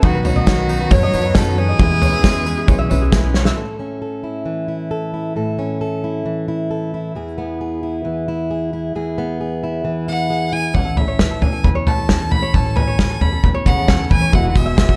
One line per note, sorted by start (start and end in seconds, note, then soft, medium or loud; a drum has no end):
0.01 0.80 B1 loud
0.01 1.76 B1 medium
0.01 0.45 B2 medium
0.01 1.76 B2 medium
0.01 0.46 D#3 medium
0.01 0.24 D#3 medium
0.01 0.46 F#3 medium
0.01 0.18 F#3 loud
0.01 0.47 B3 medium
0.01 0.17 B3 medium
0.01 0.47 C#4 medium
0.01 0.17 C#4 medium
0.01 0.47 D#4 medium
0.01 0.18 D#4 medium
0.01 0.23 F#4 medium
0.01 0.47 F#4 medium
0.01 0.18 B4 loud
0.01 kick loud
0.01 floor tom loud
0.01 tambourine soft
0.15 0.57 B4 medium
0.25 0.93 D#3 medium
0.25 0.39 F#3 medium
0.25 0.39 B3 medium
0.25 0.39 C#4 medium
0.25 0.39 D#4 medium
0.25 0.93 F#4 medium
0.25 0.39 B4 medium
0.25 0.46 C#5 medium
0.25 floor tom medium
0.25 tambourine medium
0.36 0.80 D#5 medium
0.36 floor tom medium
0.46 0.91 B2 medium
0.46 0.91 D#3 medium
0.46 0.61 F#3 medium
0.46 0.89 F#3 medium
0.46 0.61 B3 medium
0.46 0.91 B3 medium
0.46 0.61 C#4 medium
0.46 0.92 C#4 medium
0.46 0.61 D#4 medium
0.46 0.92 F#4 medium
0.46 0.61 B4 medium
0.46 0.90 C#5 medium
0.46 kick loud
0.46 snare loud
0.46 tambourine medium
0.58 0.79 B4 medium
0.69 0.83 F#3 medium
0.69 0.83 B3 medium
0.69 0.83 C#4 medium
0.69 1.13 D#4 medium
0.69 0.83 D#4 medium
0.69 0.83 C#5 medium
0.69 tambourine medium
0.80 1.24 B4 medium
0.90 1.10 F#2 medium
0.90 1.13 F#3 medium
0.90 1.05 F#3 medium
0.90 1.36 F#3 loud
0.90 1.05 B3 medium
0.90 1.13 B3 medium
0.90 1.05 C#4 medium
0.90 1.12 C#4 medium
0.90 1.05 D#4 medium
0.90 1.11 F#4 medium
0.90 1.05 B4 medium
0.90 1.37 C#5 loud
0.90 1.13 C#5 medium
0.90 kick loud
0.90 floor tom loud
0.90 tambourine medium
1.03 1.47 D#5 loud
1.12 1.71 F#2 loud
1.12 1.27 F#3 medium
1.12 1.35 F#3 soft
1.12 1.27 B3 medium
1.12 1.35 B3 soft
1.12 1.35 C#4 medium
1.12 1.27 C#4 medium
1.12 1.28 D#4 loud
1.12 1.35 F#4 medium
1.12 1.28 B4 loud
1.12 1.56 C#5 medium
1.12 tambourine medium
1.25 1.46 B4 medium
1.35 1.57 B2 loud
1.35 1.57 D#3 medium
1.35 1.50 F#3 loud
1.35 1.60 F#3 medium
1.35 1.58 F#3 loud
1.35 1.50 B3 medium
1.35 1.58 B3 loud
1.35 1.50 C#4 loud
1.35 1.57 C#4 loud
1.35 1.50 D#4 medium
1.35 1.80 D#4 medium
1.35 1.56 F#4 loud
1.35 1.59 A4 medium
1.35 1.50 B4 loud
1.35 kick loud
1.35 snare loud
1.35 tambourine loud
1.47 1.80 B4 medium
1.58 3.13 E3 medium
1.58 1.72 F#3 medium
1.58 1.80 F#3 soft
1.58 1.72 B3 medium
1.58 1.80 B3 soft
1.58 1.72 C#4 medium
1.58 1.80 C#4 soft
1.58 1.72 D#4 medium
1.58 1.80 F#4 medium
1.58 3.13 G#4 loud
1.58 1.72 G#4 medium
1.58 1.80 C#5 medium
1.58 tambourine soft
1.69 1.80 D#5 medium
1.79 2.57 E2 loud
1.79 3.54 E2 medium
1.79 2.23 E3 medium
1.79 3.54 E3 medium
1.79 2.23 G#3 medium
1.79 1.94 G#3 medium
1.79 1.94 B3 medium
1.79 2.24 B3 medium
1.79 1.94 C#4 medium
1.79 2.24 C#4 medium
1.79 2.24 E4 medium
1.79 1.94 E4 medium
1.79 2.25 G#4 medium
1.79 1.94 B4 loud
1.79 kick loud
1.79 floor tom loud
1.79 tambourine soft
1.91 2.33 G#4 medium
2.02 2.16 G#3 medium
2.02 2.16 B3 medium
2.02 2.16 C#4 medium
2.02 2.16 E4 medium
2.02 2.16 B4 medium
2.02 2.22 C#5 medium
2.02 floor tom medium
2.02 tambourine medium
2.13 2.57 E5 loud
2.24 2.68 E3 medium
2.24 2.38 G#3 medium
2.24 2.66 G#3 medium
2.24 2.38 B3 medium
2.24 2.67 B3 medium
2.24 2.38 C#4 medium
2.24 2.68 C#4 medium
2.24 2.38 E4 medium
2.24 2.38 G#4 medium
2.24 2.69 G#4 medium
2.24 2.67 C#5 medium
2.24 kick loud
2.24 snare loud
2.24 tambourine medium
2.34 2.56 G#4 medium
2.46 2.60 G#3 medium
2.46 2.60 B3 medium
2.46 2.60 C#4 medium
2.46 2.90 E4 medium
2.46 2.60 E4 medium
2.46 2.60 B4 medium
2.46 tambourine medium
2.58 3.00 G#4 medium
2.67 2.87 B1 loud
2.67 2.82 G#3 medium
2.67 2.90 G#3 medium
2.67 2.82 B3 medium
2.67 2.90 B3 medium
2.67 2.82 C#4 medium
2.67 2.90 C#4 medium
2.67 2.82 E4 medium
2.67 2.82 G#4 loud
2.67 2.88 G#4 medium
2.67 2.88 C#5 medium
2.67 kick loud
2.67 floor tom loud
2.67 tambourine medium
2.79 3.23 E5 loud
2.89 3.49 B1 loud
2.89 3.05 G#3 loud
2.89 3.05 B3 loud
2.89 3.13 B3 medium
2.89 3.05 C#4 loud
2.89 3.13 C#4 medium
2.89 3.05 E4 loud
2.89 3.12 G#4 medium
2.89 3.05 B4 loud
2.89 3.34 C#5 medium
2.89 tambourine medium
3.01 3.23 G#4 medium
3.12 3.35 E3 medium
3.12 3.26 G#3 loud
3.12 3.35 G#3 loud
3.12 3.26 B3 loud
3.12 3.35 B3 loud
3.12 3.26 C#4 loud
3.12 3.35 C#4 loud
3.12 3.26 E4 medium
3.12 3.57 E4 medium
3.12 3.33 G#4 loud
3.12 3.27 B4 loud
3.12 kick loud
3.12 snare loud
3.12 tambourine loud
3.24 3.57 G#4 medium
3.34 3.49 G#3 medium
3.34 3.49 B3 medium
3.34 3.59 B3 soft
3.34 3.49 C#4 medium
3.34 3.58 C#4 medium
3.34 3.49 E4 medium
3.34 3.49 F#4 medium
3.34 3.57 G#4 medium
3.34 3.57 C#5 medium
3.34 snare medium
3.34 tambourine soft
3.45 3.57 E5 medium
3.45 snare medium
3.56 5.33 A2 soft
3.56 4.01 A4 soft
3.79 5.33 C#4 soft
4.02 4.90 A4 soft
4.24 4.68 E4 soft
4.46 6.25 E3 soft
4.68 5.13 E4 soft
4.91 5.33 A4 medium
5.14 6.04 E4 soft
5.36 7.13 A2 soft
5.36 5.80 A4 soft
5.59 7.13 C#4 soft
5.81 6.69 A4 soft
6.04 6.48 E4 soft
6.26 8.04 E3 soft
6.48 6.94 E4 soft
6.71 7.13 A4 soft
6.94 7.83 E4 soft
7.15 8.94 E2 medium
7.15 7.60 G#4 medium
7.38 9.18 B3 soft
7.61 8.49 G#4 soft
7.83 8.28 E4 soft
8.05 9.83 E3 medium
8.28 8.73 E4 medium
8.51 8.93 G#4 medium
8.73 9.63 E4 soft
8.95 10.75 E2 medium
8.95 9.39 G#4 medium
9.18 10.73 B3 medium
9.41 10.29 G#4 soft
9.64 10.07 E4 soft
9.85 12.54 E3 medium
10.08 10.51 E4 soft
10.08 10.54 F#5 medium
10.30 10.72 G#4 soft
10.53 10.72 E4 medium
10.53 10.76 G#5 medium
10.74 11.33 A1 medium
10.74 11.19 C#4 medium
10.74 10.98 F#5 medium
10.74 kick soft
10.74 floor tom medium
10.85 11.29 A4 medium
10.96 11.07 B4 medium
10.96 11.43 E5 medium
10.96 floor tom medium
11.08 11.53 C#5 medium
11.19 11.63 B4 medium
11.19 kick soft
11.19 snare medium
11.19 floor tom medium
11.31 11.51 A4 medium
11.41 11.61 E2 medium
11.41 11.87 C#4 medium
11.41 11.65 G#5 medium
11.41 floor tom medium
11.52 11.75 A4 medium
11.64 12.43 E2 medium
11.64 11.85 B4 medium
11.64 kick soft
11.64 floor tom medium
11.75 12.20 C#5 medium
11.87 12.30 B4 medium
11.87 12.33 A5 medium
11.87 floor tom medium
11.98 12.19 A4 medium
12.09 12.52 C#4 medium
12.09 kick medium
12.09 snare medium
12.09 floor tom medium
12.20 12.64 A4 medium
12.31 12.74 B4 medium
12.31 12.56 B5 medium
12.31 floor tom medium
12.42 12.86 C#5 medium
12.53 13.13 A1 medium
12.53 12.99 C#4 medium
12.53 12.77 A5 medium
12.53 kick medium
12.53 floor tom medium
12.65 13.09 A4 medium
12.76 12.97 B4 medium
12.76 13.23 G#5 medium
12.76 floor tom medium
12.87 13.32 C#5 medium
12.98 13.42 B4 medium
12.98 kick medium
12.98 snare medium
12.98 floor tom medium
13.10 13.31 A4 medium
13.21 13.41 E2 medium
13.21 13.66 C#4 medium
13.21 13.44 B5 medium
13.21 floor tom medium
13.32 13.75 A4 medium
13.44 14.22 E2 medium
13.44 13.64 B4 medium
13.44 kick medium
13.44 floor tom medium
13.54 13.99 C#5 medium
13.66 14.08 C#3 medium
13.66 14.09 B4 medium
13.66 14.08 F#5 medium
13.66 kick medium
13.66 floor tom medium
13.77 13.98 A4 medium
13.88 14.32 C#4 medium
13.88 kick medium
13.88 snare loud
13.88 floor tom medium
13.99 14.33 A4 medium
14.10 14.34 E3 medium
14.10 14.33 B4 medium
14.10 14.36 G#5 loud
14.10 kick medium
14.10 floor tom medium
14.21 14.33 C#5 medium
14.33 14.92 E1 medium
14.33 14.96 E2 medium
14.33 14.50 B2 medium
14.33 14.77 E3 medium
14.33 14.96 E3 medium
14.33 14.48 G#3 medium
14.33 14.76 G#3 medium
14.33 14.78 B3 medium
14.33 14.78 E4 medium
14.33 14.48 E4 medium
14.33 14.79 E4 medium
14.33 14.48 F#4 medium
14.33 14.78 F#4 medium
14.33 14.48 B4 loud
14.33 14.49 F#5 medium
14.33 kick medium
14.33 floor tom medium
14.44 14.87 F#4 medium
14.48 14.57 D#3 soft
14.48 14.58 F#5 medium
14.55 14.96 B2 medium
14.55 14.70 G#3 medium
14.55 14.70 E4 medium
14.55 14.70 F#4 medium
14.55 14.75 G#4 medium
14.55 14.70 G#4 medium
14.55 14.96 E5 medium
14.55 kick medium
14.55 floor tom medium
14.55 tambourine medium
14.66 14.96 E5 loud
14.76 14.96 E3 medium
14.76 14.92 G#3 medium
14.76 14.96 G#3 medium
14.76 14.96 B3 medium
14.76 14.92 E4 medium
14.76 14.96 E4 medium
14.76 14.92 F#4 medium
14.76 14.96 F#4 medium
14.76 14.96 G#4 medium
14.76 14.92 C#5 medium
14.76 kick medium
14.76 snare loud
14.76 floor tom medium
14.76 tambourine medium
14.88 14.96 F#4 medium
14.88 kick medium